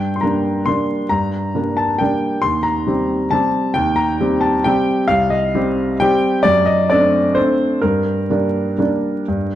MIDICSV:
0, 0, Header, 1, 2, 480
1, 0, Start_track
1, 0, Key_signature, -2, "minor"
1, 0, Tempo, 446097
1, 1194, Time_signature, 3, 2, 24, 8
1, 7424, Tempo, 469116
1, 8864, Tempo, 491803
1, 10078, End_track
2, 0, Start_track
2, 0, Title_t, "Grand piano"
2, 0, Program_c, 0, 0
2, 0, Control_c, 0, 64, 127
2, 0, Note_on_c, 0, 43, 48
2, 0, Note_on_c, 0, 79, 68
2, 148, Note_off_c, 0, 79, 0
2, 170, Note_on_c, 0, 84, 46
2, 219, Note_off_c, 0, 43, 0
2, 224, Note_on_c, 0, 82, 60
2, 238, Note_off_c, 0, 84, 0
2, 246, Note_on_c, 0, 55, 35
2, 248, Note_on_c, 0, 58, 36
2, 254, Note_on_c, 0, 62, 38
2, 682, Note_off_c, 0, 55, 0
2, 683, Note_off_c, 0, 58, 0
2, 685, Note_off_c, 0, 62, 0
2, 706, Note_on_c, 0, 84, 68
2, 713, Note_off_c, 0, 82, 0
2, 717, Note_on_c, 0, 55, 35
2, 726, Note_on_c, 0, 58, 34
2, 728, Control_c, 0, 64, 0
2, 732, Note_on_c, 0, 62, 36
2, 1151, Note_off_c, 0, 55, 0
2, 1156, Note_off_c, 0, 58, 0
2, 1159, Note_off_c, 0, 62, 0
2, 1178, Note_on_c, 0, 82, 68
2, 1189, Note_off_c, 0, 84, 0
2, 1194, Note_on_c, 0, 43, 48
2, 1397, Control_c, 0, 64, 127
2, 1662, Note_off_c, 0, 43, 0
2, 1666, Note_on_c, 0, 55, 35
2, 1677, Note_on_c, 0, 58, 36
2, 1682, Note_on_c, 0, 62, 37
2, 1901, Note_on_c, 0, 81, 66
2, 1909, Note_off_c, 0, 82, 0
2, 2107, Note_off_c, 0, 55, 0
2, 2113, Note_off_c, 0, 58, 0
2, 2115, Note_off_c, 0, 62, 0
2, 2134, Note_on_c, 0, 79, 68
2, 2147, Note_off_c, 0, 81, 0
2, 2162, Note_on_c, 0, 58, 36
2, 2163, Note_on_c, 0, 55, 38
2, 2168, Control_c, 0, 64, 0
2, 2172, Note_on_c, 0, 62, 41
2, 2580, Note_off_c, 0, 58, 0
2, 2581, Note_off_c, 0, 55, 0
2, 2585, Note_off_c, 0, 62, 0
2, 2600, Note_on_c, 0, 84, 78
2, 2610, Note_off_c, 0, 79, 0
2, 2618, Note_on_c, 0, 39, 48
2, 2799, Control_c, 0, 64, 127
2, 2830, Note_on_c, 0, 82, 71
2, 2840, Note_off_c, 0, 84, 0
2, 3072, Note_off_c, 0, 39, 0
2, 3086, Note_on_c, 0, 55, 37
2, 3093, Note_on_c, 0, 60, 35
2, 3096, Note_on_c, 0, 67, 39
2, 3530, Note_off_c, 0, 55, 0
2, 3534, Note_off_c, 0, 60, 0
2, 3535, Note_off_c, 0, 67, 0
2, 3557, Note_on_c, 0, 81, 72
2, 3563, Note_off_c, 0, 82, 0
2, 3569, Note_on_c, 0, 55, 41
2, 3576, Note_on_c, 0, 60, 38
2, 3582, Control_c, 0, 64, 0
2, 3583, Note_on_c, 0, 67, 44
2, 4006, Note_off_c, 0, 55, 0
2, 4009, Note_off_c, 0, 60, 0
2, 4013, Note_off_c, 0, 67, 0
2, 4023, Note_on_c, 0, 79, 82
2, 4040, Note_on_c, 0, 39, 54
2, 4043, Note_off_c, 0, 81, 0
2, 4253, Control_c, 0, 64, 127
2, 4258, Note_on_c, 0, 82, 75
2, 4272, Note_off_c, 0, 79, 0
2, 4507, Note_off_c, 0, 39, 0
2, 4524, Note_on_c, 0, 55, 39
2, 4528, Note_on_c, 0, 60, 39
2, 4529, Note_on_c, 0, 67, 45
2, 4742, Note_on_c, 0, 81, 69
2, 4755, Note_off_c, 0, 82, 0
2, 4967, Note_off_c, 0, 55, 0
2, 4969, Note_off_c, 0, 60, 0
2, 4970, Note_off_c, 0, 67, 0
2, 4997, Note_on_c, 0, 79, 80
2, 4998, Note_off_c, 0, 81, 0
2, 5014, Note_on_c, 0, 55, 43
2, 5021, Note_on_c, 0, 67, 50
2, 5023, Control_c, 0, 64, 0
2, 5023, Note_on_c, 0, 60, 44
2, 5444, Note_off_c, 0, 55, 0
2, 5448, Note_off_c, 0, 60, 0
2, 5448, Note_off_c, 0, 67, 0
2, 5461, Note_on_c, 0, 77, 96
2, 5479, Note_off_c, 0, 79, 0
2, 5491, Note_on_c, 0, 36, 59
2, 5682, Control_c, 0, 64, 127
2, 5704, Note_on_c, 0, 75, 64
2, 5706, Note_off_c, 0, 77, 0
2, 5945, Note_off_c, 0, 36, 0
2, 5968, Note_on_c, 0, 55, 45
2, 5973, Note_on_c, 0, 60, 47
2, 5973, Note_on_c, 0, 67, 49
2, 6414, Note_off_c, 0, 55, 0
2, 6416, Note_off_c, 0, 60, 0
2, 6417, Note_off_c, 0, 67, 0
2, 6444, Note_off_c, 0, 75, 0
2, 6454, Note_on_c, 0, 79, 89
2, 6460, Control_c, 0, 64, 0
2, 6463, Note_on_c, 0, 55, 46
2, 6472, Note_on_c, 0, 60, 49
2, 6475, Note_on_c, 0, 67, 50
2, 6901, Note_off_c, 0, 55, 0
2, 6906, Note_off_c, 0, 60, 0
2, 6907, Note_off_c, 0, 67, 0
2, 6917, Note_on_c, 0, 74, 90
2, 6940, Note_off_c, 0, 79, 0
2, 6941, Note_on_c, 0, 42, 67
2, 7128, Control_c, 0, 64, 127
2, 7163, Note_on_c, 0, 75, 75
2, 7167, Note_off_c, 0, 74, 0
2, 7410, Note_off_c, 0, 42, 0
2, 7415, Note_off_c, 0, 75, 0
2, 7420, Note_on_c, 0, 74, 77
2, 7434, Note_on_c, 0, 57, 43
2, 7437, Note_on_c, 0, 60, 44
2, 7443, Note_on_c, 0, 62, 48
2, 7863, Note_off_c, 0, 57, 0
2, 7865, Note_off_c, 0, 60, 0
2, 7868, Note_off_c, 0, 62, 0
2, 7881, Note_on_c, 0, 72, 78
2, 7897, Note_off_c, 0, 74, 0
2, 7897, Note_on_c, 0, 57, 45
2, 7904, Note_on_c, 0, 60, 43
2, 7908, Note_on_c, 0, 62, 49
2, 7909, Control_c, 0, 64, 0
2, 8334, Note_off_c, 0, 57, 0
2, 8338, Note_off_c, 0, 60, 0
2, 8340, Note_off_c, 0, 62, 0
2, 8361, Note_on_c, 0, 70, 69
2, 8367, Note_off_c, 0, 72, 0
2, 8377, Note_on_c, 0, 43, 59
2, 8557, Control_c, 0, 64, 127
2, 8848, Note_off_c, 0, 43, 0
2, 8858, Note_on_c, 0, 55, 41
2, 8862, Note_on_c, 0, 58, 40
2, 8869, Note_on_c, 0, 62, 45
2, 9304, Note_off_c, 0, 55, 0
2, 9306, Note_off_c, 0, 58, 0
2, 9309, Note_off_c, 0, 62, 0
2, 9328, Note_on_c, 0, 55, 41
2, 9334, Note_on_c, 0, 58, 42
2, 9344, Note_on_c, 0, 62, 47
2, 9355, Control_c, 0, 64, 0
2, 9780, Note_off_c, 0, 55, 0
2, 9783, Note_off_c, 0, 58, 0
2, 9788, Note_off_c, 0, 62, 0
2, 9816, Note_on_c, 0, 43, 55
2, 10014, Control_c, 0, 64, 127
2, 10078, Note_off_c, 0, 43, 0
2, 10078, Note_off_c, 0, 70, 0
2, 10078, End_track
0, 0, End_of_file